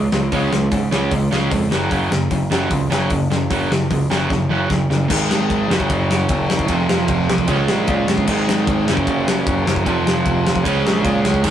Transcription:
Already playing: distorted electric guitar C#3 G#3
0.12 picked electric bass C#2, distorted electric guitar C#3 G#3, snare
0.32 picked electric bass C#2, distorted electric guitar C#3 G#3 C#4, kick, open hi-hat
0.52 picked electric bass C#2, distorted electric guitar C#3 G#3, snare
0.72 picked electric bass G#2, distorted electric guitar C#3 G#3, kick, open hi-hat
0.92 picked electric bass C#2, distorted electric guitar C#3 G#3 C#4, snare
1.11 picked electric bass C#2, distorted electric guitar C#3 G#3, kick, open hi-hat
1.32 picked electric bass C#2, distorted electric guitar C#3 G#3 C#4, snare
1.51 picked electric bass F2, distorted electric guitar C#3 G#3, kick, open hi-hat
1.71 picked electric bass F#1, distorted electric guitar F#2 C#3 F#3, snare
1.90 picked electric bass F#1, distorted electric guitar F#2 C#3 F#3, kick, open hi-hat
2.11 picked electric bass F#1, distorted electric guitar F#2 C#3, snare
2.31 picked electric bass F#1, distorted electric guitar F#2 C#3, kick, open hi-hat
2.51 picked electric bass F#1, distorted electric guitar F#2 C#3 F#3, snare
2.71 picked electric bass C#2, distorted electric guitar F#2 C#3, kick, open hi-hat
2.91 picked electric bass F#1, distorted electric guitar F#2 C#3 F#3, snare
3.10 picked electric bass F#1, distorted electric guitar F#2 C#3, kick, open hi-hat
3.30 picked electric bass F#1, distorted electric guitar F#2 C#3, snare
3.50 picked electric bass F#1, distorted electric guitar F#2 C#3 F#3, kick, open hi-hat
3.70 picked electric bass F#1, distorted electric guitar F#2 C#3, snare
3.90 picked electric bass C#2, distorted electric guitar F#2 C#3, kick, open hi-hat
4.10 picked electric bass F#1, distorted electric guitar F#2 C#3 F#3, snare
4.30 picked electric bass F#1, distorted electric guitar F#2 C#3, kick, snare
4.50 picked electric bass F#1, distorted electric guitar F#2 C#3 F#3
4.70 picked electric bass F#1, distorted electric guitar F#2 C#3, kick, snare
4.90 picked electric bass F#1, distorted electric guitar F#2 C#3, snare
5.10 picked electric bass G#1, distorted electric guitar G#2 D#3 G#3, kick, crash
5.30 picked electric bass G#1, snare
5.50 picked electric bass G#1, kick, ride
5.69 picked electric bass F#1, distorted electric guitar F#2 C#3 F#3, snare
5.80 kick
5.90 picked electric bass F#1, kick, ride
6.11 snare
6.29 picked electric bass F#1, kick, ride
6.50 picked electric bass F#1, snare
6.59 kick
6.68 picked electric bass F1, distorted electric guitar F2 C3 F3, kick, ride
6.89 picked electric bass F1, snare
7.08 picked electric bass F1, kick, ride
7.29 picked electric bass C2, snare
7.38 kick
7.48 picked electric bass C#2, distorted electric guitar C#3 G#3 C#4, kick, ride
7.68 picked electric bass A#1, snare
7.88 picked electric bass A#2, kick, ride
8.08 picked electric bass G1, snare
8.18 kick
8.27 picked electric bass G#1, distorted electric guitar G#2 D#3 G#3, kick, crash
8.48 picked electric bass G#1, snare
8.67 picked electric bass G#1, kick, ride
8.86 picked electric bass F#1, distorted electric guitar F#2 C#3 F#3, snare
8.97 kick
9.07 picked electric bass F#1, kick, ride
9.28 snare
9.47 picked electric bass F#1, kick, ride
9.67 picked electric bass F#1, snare
9.76 kick
9.85 picked electric bass F1, distorted electric guitar F2 C3 F3, kick, ride
10.06 picked electric bass F1, snare
10.26 picked electric bass F1, kick, ride
10.46 picked electric bass F1, snare
10.56 kick
10.64 picked electric bass C#2, distorted electric guitar C#3 G#3 C#4, kick, ride
10.85 picked electric bass A#1, snare
11.05 picked electric bass A#2, kick, ride
11.24 picked electric bass C#2, snare
11.34 kick
11.43 picked electric bass G#1, distorted electric guitar G#2 D#3 G#3, kick, crash

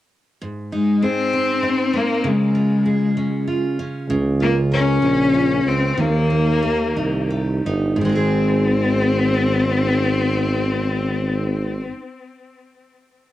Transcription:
0.41 steel-string acoustic guitar G#2
0.72 cello G#3, steel-string acoustic guitar D#4
1.03 cello C4, steel-string acoustic guitar G#4
1.33 steel-string acoustic guitar C4
1.63 steel-string acoustic guitar D#4
1.93 cello A#3, steel-string acoustic guitar C4
2.24 steel-string acoustic guitar C#3, cello G#3
2.55 steel-string acoustic guitar F4
2.86 steel-string acoustic guitar G#4
3.17 steel-string acoustic guitar C#4
3.48 steel-string acoustic guitar F4
3.79 steel-string acoustic guitar C#4
4.09 tuba C#2, steel-string acoustic guitar C#3
4.40 cello A#3, steel-string acoustic guitar F4
4.72 cello C#4, steel-string acoustic guitar A#4
5.02 tuba A#1, steel-string acoustic guitar C#4
5.34 steel-string acoustic guitar F4
5.65 tuba C#2, cello C4
5.97 tuba D#2, steel-string acoustic guitar D#3, cello A#3
6.30 steel-string acoustic guitar G4
6.62 steel-string acoustic guitar A#4
6.96 tuba C2, steel-string acoustic guitar D#4
7.30 steel-string acoustic guitar G4
7.65 tuba G1, steel-string acoustic guitar D#4
7.96 steel-string acoustic guitar G#2
8.01 tuba G#1, steel-string acoustic guitar D#3 G#3, cello C4
8.09 steel-string acoustic guitar C4 D#4
8.15 steel-string acoustic guitar G#4

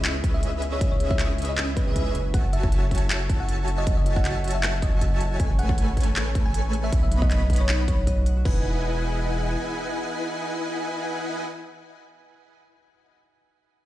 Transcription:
Already playing: sub bass C#2, analog synth pad C#3 G#3 B3 E4, harp C#4 G#4 E5, supersaw synth C#4 G#4 B4 D#5 E5, digital synth lead E5
0.05 harp E4, clap, closed hi-hat
0.15 harp G#4
0.24 harp C#4, kick, closed hi-hat
0.34 synth pluck E5, harp E5
0.43 supersaw synth C#4 G#4 B4 D#5 E5, harp G#4, digital synth lead E5, closed hi-hat
0.53 harp C#4
0.62 harp E4, closed hi-hat
0.72 harp G#4, synth pluck C#5
0.81 supersaw synth C#4 G#4 B4 D#5 E5, harp C#4, digital synth lead E5, kick, closed hi-hat
0.92 synth pluck C#5, harp E5
1.00 harp G#4, closed hi-hat
1.11 harp C#4, synth pluck E5, kick
1.19 harp E4, clap, closed hi-hat
1.30 harp G#4
1.38 harp C#4, closed hi-hat
1.42 closed hi-hat
1.45 closed hi-hat
1.49 synth pluck D#5, harp E5
1.58 harp G#4, clap, closed hi-hat
1.68 harp C#4
1.77 harp E4, synth pluck B4, kick, closed hi-hat
1.87 supersaw synth C#4 G#4 B4 D#5 E5, harp G#4, digital synth lead E5
1.96 harp C#4, kick, closed hi-hat
2.06 harp E5
2.15 sub bass F#1, analog synth pad F#3 C#4 A4, harp F#4, closed hi-hat
2.25 harp C#4
2.34 harp E4, supersaw synth F#4 C#5 E5 G#5 A5, synth pluck F#5, digital synth lead A5, kick, closed hi-hat
2.44 harp F#4
2.53 harp C#4, synth pluck E5, closed hi-hat
2.63 harp E5, kick
2.72 harp F#4, closed hi-hat
2.83 harp C#4
2.91 harp E4, kick, closed hi-hat
2.95 closed hi-hat
2.98 closed hi-hat
3.02 harp F#4
3.10 harp C#4, clap, closed hi-hat
3.21 harp E5
3.29 harp F#4, kick, closed hi-hat
3.40 harp C#4, synth pluck F#5
3.49 harp E4, supersaw synth F#4 C#5 E5 G#5 A5, digital synth lead A5, closed hi-hat
3.59 harp F#4
3.68 harp C#4, closed hi-hat
3.78 synth pluck D#5, harp E5
3.87 harp F#4, supersaw synth F#4 C#5 E5 G#5 A5, digital synth lead A5, kick, closed hi-hat
3.97 harp C#4, synth pluck D#5
4.06 harp E4, closed hi-hat
4.16 harp F#4, synth pluck F#5, kick
4.25 harp C#4, clap, closed hi-hat
4.35 harp E5
4.44 harp F#4, closed hi-hat
4.48 closed hi-hat
4.51 harp C#4, synth pluck E5, closed hi-hat
4.63 harp E4, clap, closed hi-hat
4.74 harp F#4
4.82 harp C#4, synth pluck D#5, kick, closed hi-hat
4.93 supersaw synth F#4 C#5 E5 G#5 A5, harp E5, digital synth lead A5
5.01 harp F#4, kick, closed hi-hat
5.12 harp C#4
5.20 harp E4, closed hi-hat
5.31 harp F#4
5.40 sub bass A1, analog synth pad A3 C#4, supersaw synth A3 A4 B4 C#5 G#5, harp C#4, synth pluck G#5, digital synth lead G#5, kick, closed hi-hat
5.50 harp C#5
5.59 harp G#4, synth pluck F#5, closed hi-hat
5.69 harp C#4, kick
5.78 harp E4, closed hi-hat
5.88 harp G#4
5.97 harp C#4, kick, closed hi-hat
6.01 closed hi-hat
6.03 harp C#5, closed hi-hat
6.16 harp G#4, clap, closed hi-hat
6.26 harp C#4
6.35 harp E4, kick, closed hi-hat
6.46 harp G#4, synth pluck G#5
6.54 supersaw synth A3 A4 B4 C#5 G#5, harp C#4, digital synth lead G#5, closed hi-hat
6.65 harp C#5
6.73 harp G#4, closed hi-hat
6.84 harp C#4, synth pluck E5
6.92 sub bass B1, analog synth pad B3 D#4, supersaw synth B3 B4 C#5 D#5 B5, harp F#4, digital synth lead B5, kick, closed hi-hat
7.03 harp A4, synth pluck E5
7.12 harp D#4, closed hi-hat
7.22 synth pluck D#5, harp F#5, kick
7.31 harp A4, clap, closed hi-hat
7.41 harp D#4
7.50 harp F#4, kick, closed hi-hat
7.53 closed hi-hat
7.56 closed hi-hat
7.60 harp A4, synth pluck C#5
7.69 harp D#4, clap, closed hi-hat
7.79 harp F#5
7.88 harp D#4, synth pluck C#5, kick, closed hi-hat
7.98 harp B4
8.07 harp D#5, kick, closed hi-hat
8.18 harp F#4
8.26 harp F#5, closed hi-hat
8.37 harp F#4
8.45 sub bass E1, analog synth pad E3 B3 G#4 D#5, harp D#4, supersaw synth E4 B4 D#5 F#5 G#5, synth pluck B4, digital synth lead G#5, kick, crash

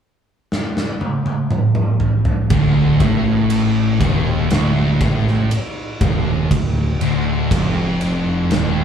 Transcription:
0.52 snare
0.77 snare
1.01 high tom
1.26 high tom
1.50 mid tom
1.75 mid tom
2.00 floor tom
2.25 floor tom
2.50 picked electric bass D1, distorted electric guitar D2, kick, ride
3.00 picked electric bass A1, distorted electric guitar A2, kick, ride
3.50 ride
4.01 picked electric bass D#1, distorted electric guitar D#2, kick, ride
4.50 picked electric bass D1, distorted electric guitar D2, snare, ride
5.01 picked electric bass A1, distorted electric guitar A2, kick, ride
5.28 snare
5.51 ride
6.01 picked electric bass D#1, distorted electric guitar D#2, kick, ride
6.51 picked electric bass D1, distorted electric guitar D2, kick, ride
7.01 picked electric bass D1, distorted electric guitar D2, ride
7.51 picked electric bass F1, distorted electric guitar F2, kick, ride
8.01 ride
8.51 picked electric bass D#1, distorted electric guitar D#2, snare, ride

